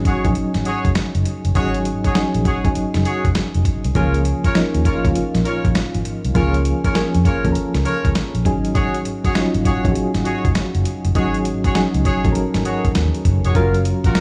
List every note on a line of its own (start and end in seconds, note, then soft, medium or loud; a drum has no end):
0.00 0.24 F#3 medium
0.00 0.25 C#4 medium
0.00 0.25 D#4 medium
0.00 0.26 G#4 medium
0.05 0.27 F#4 medium
0.05 0.28 G#4 medium
0.05 0.28 C#5 medium
0.05 kick medium
0.05 closed hi-hat medium
0.24 0.32 A#1 medium
0.24 1.02 F#3 medium
0.24 1.02 C#4 medium
0.24 1.02 D#4 medium
0.24 1.03 G#4 medium
0.24 kick loud
0.24 closed hi-hat soft
0.35 closed hi-hat medium
0.54 0.62 G#1 medium
0.54 snare medium
0.54 closed hi-hat soft
0.65 0.87 F#4 medium
0.65 0.88 G#4 medium
0.65 0.88 C#5 medium
0.65 closed hi-hat medium
0.85 0.92 F#1 medium
0.85 kick medium
0.85 closed hi-hat soft
0.95 muted fingered electric bass stroke soft
0.95 snare loud
0.95 closed hi-hat medium
1.15 1.23 F#1 medium
1.15 closed hi-hat medium
1.25 closed hi-hat medium
1.45 1.52 F#1 medium
1.45 closed hi-hat medium
1.55 1.91 G#1 loud
1.55 1.98 F#3 medium
1.55 1.98 C#4 medium
1.55 1.99 D#4 medium
1.55 1.77 F#4 medium
1.55 1.77 G#4 medium
1.55 1.99 G#4 loud
1.55 1.78 C#5 loud
1.55 kick loud
1.55 closed hi-hat medium
1.74 closed hi-hat medium
1.85 closed hi-hat medium
2.04 2.20 F#4 medium
2.04 2.21 G#4 medium
2.04 2.21 C#5 medium
2.04 kick medium
2.04 closed hi-hat medium
2.15 2.45 F#3 medium
2.15 2.45 C#4 medium
2.15 2.46 D#4 medium
2.15 2.46 G#4 loud
2.15 snare loud
2.15 closed hi-hat medium
2.34 2.42 A#1 medium
2.34 closed hi-hat medium
2.45 2.67 F#4 medium
2.45 2.67 G#4 medium
2.45 2.68 C#5 medium
2.45 kick medium
2.45 closed hi-hat medium
2.64 2.72 G#1 medium
2.64 3.42 F#3 medium
2.64 3.42 C#4 medium
2.64 3.42 D#4 medium
2.64 3.43 G#4 medium
2.64 kick medium
2.64 closed hi-hat soft
2.75 muted fingered electric bass stroke soft
2.75 closed hi-hat medium
2.94 3.02 F#1 medium
2.94 snare medium
2.94 closed hi-hat soft
3.05 3.27 F#4 medium
3.05 3.27 G#4 medium
3.05 3.28 C#5 medium
3.05 closed hi-hat medium
3.25 3.32 F#1 medium
3.25 kick loud
3.25 closed hi-hat soft
3.35 muted fingered electric bass stroke soft
3.35 snare loud
3.35 closed hi-hat medium
3.54 3.63 F1 medium
3.54 closed hi-hat soft
3.65 kick medium
3.65 closed hi-hat medium
3.84 3.93 C2 medium
3.84 closed hi-hat medium
3.95 4.31 C#2 loud
3.95 4.38 F3 medium
3.95 4.38 A#3 medium
3.95 4.39 C#4 medium
3.95 4.17 F4 medium
3.95 4.39 G#4 loud
3.95 4.17 A#4 medium
3.95 4.18 C#5 medium
3.95 kick loud
3.95 closed hi-hat medium
4.14 closed hi-hat medium
4.25 closed hi-hat medium
4.44 4.60 F4 medium
4.44 4.60 A#4 medium
4.44 4.61 C#5 medium
4.44 kick medium
4.44 closed hi-hat medium
4.55 4.85 F3 medium
4.55 4.85 A#3 medium
4.55 4.86 C#4 medium
4.55 4.86 D#4 medium
4.55 snare loud
4.55 closed hi-hat medium
4.74 4.82 D#2 medium
4.74 closed hi-hat medium
4.85 5.07 F4 medium
4.85 5.07 A#4 medium
4.85 5.08 C#5 medium
4.85 kick medium
4.85 closed hi-hat medium
5.04 5.12 C#2 medium
5.04 5.82 F3 medium
5.04 5.82 A#3 medium
5.04 5.82 C#4 medium
5.04 5.83 F4 medium
5.04 kick loud
5.04 closed hi-hat soft
5.15 muted fingered electric bass stroke soft
5.15 closed hi-hat medium
5.35 5.42 A#1 medium
5.35 snare medium
5.35 closed hi-hat medium
5.45 5.67 F4 medium
5.45 5.67 A#4 medium
5.45 5.68 C#5 medium
5.45 closed hi-hat medium
5.65 5.72 A#1 medium
5.65 kick medium
5.65 closed hi-hat soft
5.75 snare loud
5.75 closed hi-hat medium
5.94 6.02 G#1 medium
5.94 closed hi-hat soft
6.05 closed hi-hat medium
6.25 6.32 C2 medium
6.25 closed hi-hat medium
6.35 6.71 C#2 loud
6.35 6.78 F3 medium
6.35 6.78 A#3 medium
6.35 6.79 C#4 medium
6.35 6.57 F4 medium
6.35 6.79 G#4 loud
6.35 6.57 A#4 medium
6.35 6.57 C#5 loud
6.35 kick loud
6.35 closed hi-hat medium
6.54 closed hi-hat medium
6.65 closed hi-hat medium
6.84 7.00 F4 medium
6.84 7.00 A#4 medium
6.84 7.01 C#5 medium
6.84 kick medium
6.84 closed hi-hat medium
6.95 7.25 F3 medium
6.95 7.25 A#3 medium
6.95 7.26 C#4 medium
6.95 7.26 G#4 medium
6.95 snare loud
6.95 closed hi-hat medium
7.14 7.22 F2 medium
7.14 closed hi-hat medium
7.25 7.47 F4 medium
7.25 7.47 A#4 medium
7.25 7.48 C#5 medium
7.25 kick medium
7.25 closed hi-hat medium
7.44 7.52 D#2 medium
7.44 8.22 F3 medium
7.44 8.22 A#3 medium
7.44 8.22 C#4 medium
7.44 7.50 A4 medium
7.44 kick medium
7.44 closed hi-hat soft
7.52 8.26 A#4 medium
7.52 muted fingered electric bass stroke soft
7.52 closed hi-hat medium
7.74 7.82 C#2 medium
7.74 snare medium
7.74 closed hi-hat soft
7.85 8.07 F4 medium
7.85 8.07 A#4 medium
7.85 8.07 C#5 medium
7.85 closed hi-hat medium
8.05 8.13 C#2 medium
8.05 kick medium
8.05 closed hi-hat soft
8.15 snare loud
8.15 closed hi-hat medium
8.35 8.42 A#1 medium
8.35 closed hi-hat soft
8.45 9.03 G#1 medium
8.45 9.21 F#3 medium
8.45 9.21 C#4 medium
8.45 9.21 D#4 medium
8.45 9.21 G#4 medium
8.45 kick medium
8.45 closed hi-hat medium
8.65 closed hi-hat medium
8.75 8.97 F#4 medium
8.75 8.97 G#4 medium
8.75 8.98 C#5 loud
8.75 kick loud
8.75 closed hi-hat medium
8.94 closed hi-hat medium
9.05 closed hi-hat medium
9.24 9.40 F#4 medium
9.24 9.40 G#4 medium
9.24 9.41 C#5 medium
9.24 kick medium
9.24 closed hi-hat medium
9.35 9.65 F#3 medium
9.35 9.65 C#4 medium
9.35 9.66 D#4 medium
9.35 9.66 F4 medium
9.35 snare loud
9.35 closed hi-hat medium
9.54 9.62 G#1 medium
9.54 closed hi-hat medium
9.65 9.87 F#4 medium
9.65 9.87 G#4 medium
9.65 9.88 C#5 medium
9.65 kick medium
9.65 closed hi-hat medium
9.84 9.92 A#1 medium
9.84 10.62 F#3 medium
9.84 10.62 C#4 medium
9.84 10.62 D#4 medium
9.84 9.89 F#4 medium
9.84 kick medium
9.84 closed hi-hat medium
9.92 10.66 G#4 medium
9.92 muted fingered electric bass stroke soft
9.92 closed hi-hat medium
10.14 10.22 G#1 medium
10.14 snare medium
10.14 closed hi-hat medium
10.25 10.47 F#4 medium
10.25 10.47 G#4 medium
10.25 10.48 C#5 medium
10.25 closed hi-hat medium
10.45 10.53 F#1 medium
10.45 kick medium
10.45 closed hi-hat soft
10.55 snare medium
10.55 closed hi-hat medium
10.75 10.82 F#1 medium
10.75 closed hi-hat soft
10.85 closed hi-hat medium
11.05 11.12 F#1 medium
11.05 closed hi-hat medium
11.15 11.51 G#1 medium
11.15 11.58 F#3 medium
11.15 11.58 C#4 medium
11.15 11.59 D#4 medium
11.15 11.37 F#4 medium
11.15 11.37 G#4 medium
11.15 11.59 G#4 loud
11.15 11.38 C#5 loud
11.15 kick loud
11.15 closed hi-hat medium
11.34 closed hi-hat medium
11.45 closed hi-hat medium
11.64 11.80 F#4 medium
11.64 11.80 G#4 medium
11.64 11.81 C#5 medium
11.64 kick medium
11.64 closed hi-hat medium
11.75 12.05 F#3 medium
11.75 12.05 C#4 medium
11.75 12.06 D#4 medium
11.75 12.06 G#4 medium
11.75 snare loud
11.75 closed hi-hat medium
11.94 12.02 C#2 medium
11.94 closed hi-hat medium
12.05 12.27 F#4 medium
12.05 12.27 G#4 medium
12.05 12.28 C#5 medium
12.05 kick medium
12.05 closed hi-hat medium
12.24 12.32 A#1 medium
12.24 13.02 F#3 medium
12.24 13.02 C#4 medium
12.24 13.02 D#4 medium
12.24 12.30 A4 medium
12.24 kick medium
12.24 closed hi-hat soft
12.32 13.06 A#4 medium
12.32 muted fingered electric bass stroke soft
12.32 closed hi-hat medium
12.54 12.62 G#1 medium
12.54 snare medium
12.54 closed hi-hat medium
12.65 12.87 F#4 medium
12.65 12.87 G#4 medium
12.65 12.88 C#5 medium
12.65 closed hi-hat medium
12.85 12.92 G#1 medium
12.85 kick medium
12.85 closed hi-hat soft
12.95 13.09 D#2 loud
12.95 snare loud
12.95 closed hi-hat medium
13.15 closed hi-hat soft
13.25 13.39 F#1 medium
13.25 kick medium
13.25 closed hi-hat medium
13.44 13.52 F1 medium
13.44 13.54 F#4 medium
13.44 13.60 G#4 medium
13.44 13.61 C#5 medium
13.44 closed hi-hat medium
13.55 13.91 F#1 loud
13.55 14.08 F#3 medium
13.55 14.08 C#4 medium
13.55 13.77 F4 medium
13.55 14.09 F4 medium
13.55 13.77 F#4 medium
13.55 13.78 A#4 loud
13.55 14.09 A#4 medium
13.55 kick loud
13.55 closed hi-hat medium
13.74 closed hi-hat medium
13.85 closed hi-hat medium
14.04 14.12 A#1 medium
14.04 14.20 F4 medium
14.04 14.20 F#4 medium
14.04 14.20 A#4 medium
14.04 kick medium
14.04 closed hi-hat medium
14.15 muted fingered electric bass stroke soft
14.15 snare loud
14.15 closed hi-hat medium